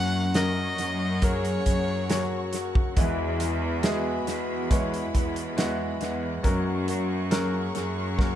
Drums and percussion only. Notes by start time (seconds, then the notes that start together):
0.34 snare, closed hi-hat
0.78 closed hi-hat
1.22 kick, closed hi-hat
1.45 closed hi-hat
1.66 kick, closed hi-hat
2.10 snare, closed hi-hat
2.53 closed hi-hat
2.75 kick
2.97 kick, closed hi-hat
3.40 closed hi-hat
3.83 snare, closed hi-hat
4.27 closed hi-hat
4.71 kick, closed hi-hat
4.94 closed hi-hat
5.15 kick, closed hi-hat
5.36 closed hi-hat
5.58 snare, closed hi-hat
6.01 closed hi-hat
6.44 kick, closed hi-hat
6.88 closed hi-hat
7.31 snare, closed hi-hat
7.75 closed hi-hat
8.19 kick, snare